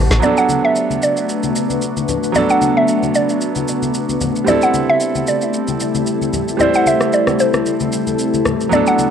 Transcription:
0.00 0.17 G3 medium
0.00 0.18 A3 medium
0.00 0.18 C4 medium
0.00 0.19 E4 medium
0.00 0.19 G4 medium
0.00 0.20 A4 medium
0.00 0.19 C5 medium
0.00 0.20 F#5 medium
0.00 0.19 A5 loud
0.11 0.21 A1 loud
0.11 snare medium
0.11 shaker medium
0.20 2.30 F#3 medium
0.20 4.43 A3 medium
0.20 2.31 B3 medium
0.20 4.43 B3 medium
0.20 4.43 D4 medium
0.20 2.31 D4 medium
0.20 4.43 F#4 medium
0.20 4.43 B4 medium
0.20 0.38 D5 loud
0.20 low conga medium
0.20 shaker medium
0.26 2.32 A4 medium
0.37 0.65 F#5 loud
0.37 shaker soft
0.49 high conga medium
0.49 shaker medium
0.65 1.04 E5 loud
0.76 shaker medium
0.90 high conga medium
0.90 shaker soft
1.02 1.52 D5 medium
1.02 shaker medium
1.17 shaker medium
1.29 shaker medium
1.43 high conga medium
1.43 shaker medium
1.56 shaker medium
1.70 high conga medium
1.70 shaker soft
1.82 shaker medium
1.97 high conga medium
1.97 shaker medium
2.09 high conga medium
2.09 low conga medium
2.09 shaker medium
2.24 shaker medium
2.32 4.42 F#3 medium
2.32 4.43 B3 medium
2.32 4.44 D4 medium
2.32 2.42 D5 loud
2.32 low conga medium
2.32 shaker medium
2.38 4.45 A4 medium
2.50 2.77 F#5 loud
2.50 shaker soft
2.61 high conga medium
2.61 shaker medium
2.77 3.16 E5 medium
2.88 shaker medium
3.03 high conga medium
3.03 shaker medium
3.15 3.64 D5 medium
3.15 shaker medium
3.29 shaker soft
3.41 shaker medium
3.56 high conga medium
3.56 shaker medium
3.68 shaker loud
3.82 high conga medium
3.82 shaker medium
3.94 shaker medium
4.09 high conga medium
4.09 shaker soft
4.21 high conga medium
4.21 low conga medium
4.21 shaker medium
4.36 shaker medium
4.45 6.54 G3 medium
4.45 8.68 G3 medium
4.45 9.10 A3 medium
4.45 6.55 C4 medium
4.45 8.68 C4 medium
4.45 8.68 E4 medium
4.45 6.56 E4 medium
4.45 9.10 A4 medium
4.45 4.63 D5 loud
4.45 low conga medium
4.45 shaker medium
4.50 6.57 A4 medium
4.62 4.75 F#5 loud
4.62 shaker soft
4.74 high conga medium
4.74 shaker medium
4.89 5.29 E5 loud
5.00 shaker medium
5.15 high conga medium
5.15 shaker soft
5.27 5.77 D5 medium
5.27 shaker medium
5.41 shaker medium
5.54 shaker medium
5.68 high conga medium
5.68 shaker medium
5.80 shaker medium
5.95 high conga medium
5.95 shaker medium
6.07 shaker medium
6.21 high conga medium
6.21 shaker medium
6.33 high conga medium
6.33 low conga medium
6.33 shaker medium
6.48 shaker medium
6.57 8.67 G3 medium
6.57 8.68 C4 medium
6.57 8.69 E4 medium
6.57 6.75 D5 loud
6.57 low conga medium
6.57 shaker medium
6.63 8.70 C5 medium
6.74 6.87 F#5 loud
6.74 shaker soft
6.86 7.12 E5 loud
6.86 high conga medium
6.86 shaker medium
7.01 cross-stick medium
7.01 shaker medium
7.13 7.41 D5 loud
7.13 shaker medium
7.27 cross-stick medium
7.27 high conga medium
7.27 shaker soft
7.40 8.42 C5 medium
7.40 shaker medium
7.53 cross-stick medium
7.53 high conga medium
7.53 shaker soft
7.66 shaker medium
7.80 high conga medium
7.80 shaker medium
7.93 shaker loud
8.07 high conga medium
8.07 shaker medium
8.19 shaker medium
8.34 high conga medium
8.34 shaker medium
8.46 cross-stick medium
8.46 high conga medium
8.46 low conga medium
8.46 shaker medium
8.61 shaker medium
8.69 9.10 F#3 medium
8.69 9.10 B3 medium
8.69 9.10 D4 medium
8.69 8.79 D5 loud
8.69 low conga medium
8.69 shaker medium
8.75 9.10 A4 medium
8.87 9.10 F#5 loud
8.87 shaker soft
8.98 high conga medium
8.98 shaker medium

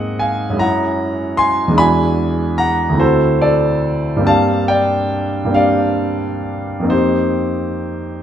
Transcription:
0.00 0.52 G#2 soft
0.00 0.53 A#3 soft
0.00 0.55 C4 soft
0.00 0.56 D#4 soft
0.00 0.57 G#4 soft
0.00 0.18 D#5 medium
0.00 0.22 F#5 medium
0.19 0.58 F5 medium
0.19 0.60 G#5 medium
0.50 1.71 F#2 soft
0.50 1.69 G#3 soft
0.54 1.73 C#4 soft
0.54 1.73 E4 soft
0.59 1.75 G#4 soft
0.59 1.36 F#5 medium
0.59 1.39 A#5 medium
1.37 1.77 G#5 medium
1.37 1.79 C6 medium
1.68 2.91 E2 medium
1.68 2.92 G#3 soft
1.72 2.93 D4 soft
1.72 2.95 E4 soft
1.78 2.96 F#4 soft
1.78 2.56 G#5 medium
1.78 2.59 B5 loud
2.58 2.98 F#5 medium
2.58 3.00 A#5 medium
2.90 4.17 D2 soft
2.90 4.18 A3 soft
2.95 4.20 C4 soft
2.95 4.21 E4 soft
2.99 4.22 F#4 soft
2.99 3.39 A4 medium
2.99 3.42 C5 medium
3.41 4.23 A4 medium
3.41 4.27 D5 medium
4.17 5.43 G2 medium
4.17 5.45 A#3 soft
4.21 5.47 C4 soft
4.21 5.50 D4 soft
4.26 5.51 G4 soft
4.26 4.67 F5 medium
4.26 4.70 A5 medium
4.68 5.52 D5 medium
4.68 5.55 G5 medium
5.45 6.82 G2 soft
5.45 6.81 A#3 soft
5.49 6.83 C4 soft
5.49 6.86 D4 soft
5.54 6.87 G4 soft
5.54 6.88 D5 medium
5.54 6.91 F5 medium
6.80 8.23 F2 soft
6.80 8.23 A#3 soft
6.84 8.23 C4 soft
6.84 8.23 D#4 soft
6.90 8.23 G4 medium
6.90 8.23 C5 medium

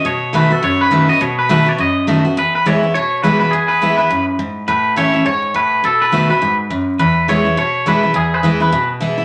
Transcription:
0.05 0.60 B2 medium
0.05 0.35 C#5 medium
0.33 0.50 D#3 medium
0.33 0.50 A3 medium
0.33 0.50 B3 medium
0.33 0.49 F#4 loud
0.33 0.52 B4 loud
0.50 0.63 B3 medium
0.50 0.62 F#4 medium
0.50 0.64 A4 medium
0.63 1.18 F#2 loud
0.63 0.81 C#5 loud
0.81 1.07 B4 medium
0.91 1.08 D#3 medium
0.91 1.08 A3 medium
0.91 1.08 B3 medium
0.91 1.07 F#4 medium
1.08 1.21 B3 soft
1.08 1.20 F#4 medium
1.08 1.21 D#5 medium
1.21 1.76 B2 medium
1.21 1.38 C#5 medium
1.39 1.49 B4 medium
1.49 1.66 D#3 medium
1.49 1.66 A3 medium
1.49 1.66 B3 medium
1.49 1.65 F#4 loud
1.49 1.69 B4 medium
1.66 1.78 B3 medium
1.66 1.78 F#4 medium
1.66 1.80 C#5 loud
1.78 2.34 F#2 medium
1.78 2.06 D#5 medium
2.07 2.24 D#3 medium
2.07 2.24 A3 loud
2.07 2.24 B3 medium
2.07 2.23 F#4 loud
2.25 2.36 B3 soft
2.25 2.36 F#4 medium
2.37 2.92 E2 medium
2.37 2.54 B4 medium
2.55 2.67 B4 loud
2.66 2.82 E3 medium
2.66 2.82 G#3 medium
2.66 2.82 B3 medium
2.66 2.82 E4 medium
2.66 2.93 C#5 loud
2.83 2.95 B3 soft
2.83 2.94 E4 medium
2.94 3.50 B2 medium
2.94 3.21 C#5 loud
3.23 3.40 E3 medium
3.23 3.40 G#3 medium
3.23 3.40 B3 medium
3.23 3.40 E4 medium
3.23 3.38 B4 medium
3.40 3.53 B3 soft
3.40 3.52 E4 medium
3.40 3.52 B4 medium
3.51 4.08 E2 medium
3.51 3.69 G#4 medium
3.68 3.96 B4 medium
3.82 3.98 E3 medium
3.82 3.98 G#3 medium
3.82 3.98 B3 medium
3.82 3.97 E4 medium
3.97 4.10 B3 soft
3.97 4.09 E4 medium
3.97 4.25 B4 medium
4.10 4.38 F#2 medium
4.39 4.67 G#2 medium
4.68 5.23 A2 medium
4.68 4.97 B4 medium
4.96 5.13 E3 medium
4.96 5.14 A3 medium
4.96 5.14 C#4 medium
4.96 5.12 E4 medium
4.96 5.25 C#5 loud
5.13 5.26 C#4 medium
5.13 5.25 E4 medium
5.26 5.53 G#2 medium
5.26 5.55 C#5 loud
5.54 5.82 A2 medium
5.54 5.85 B4 medium
5.84 6.39 B2 medium
5.84 6.02 A4 medium
6.02 6.29 B4 medium
6.12 6.29 D#3 medium
6.12 6.29 A3 medium
6.12 6.29 B3 medium
6.12 6.29 F#4 medium
6.30 6.42 B3 medium
6.30 6.41 F#4 medium
6.30 6.57 B4 medium
6.42 6.69 G#2 medium
6.70 6.98 F#2 medium
6.99 7.55 E2 medium
6.99 7.29 B4 medium
7.28 7.45 E3 medium
7.28 7.45 G#3 medium
7.28 7.45 B3 loud
7.28 7.43 E4 medium
7.28 7.57 C#5 loud
7.45 7.57 B3 medium
7.45 7.56 E4 medium
7.57 8.13 B2 medium
7.57 7.88 C#5 loud
7.86 8.02 E3 medium
7.86 8.03 G#3 medium
7.86 8.03 B3 medium
7.86 8.02 E4 medium
7.86 8.17 B4 medium
8.03 8.15 B3 soft
8.03 8.14 E4 medium
8.14 8.70 E2 medium
8.14 8.34 G#4 medium
8.34 8.61 B4 loud
8.43 8.60 E3 medium
8.43 8.60 G#3 medium
8.43 8.61 B3 medium
8.43 8.59 E4 loud
8.60 8.72 B3 medium
8.60 8.72 E4 medium
8.60 8.88 B4 medium
8.72 9.25 B2 medium
9.00 9.17 E3 medium
9.00 9.18 G#3 medium
9.00 9.18 B3 medium
9.00 9.16 E4 medium
9.18 9.25 B3 medium
9.18 9.25 E4 medium

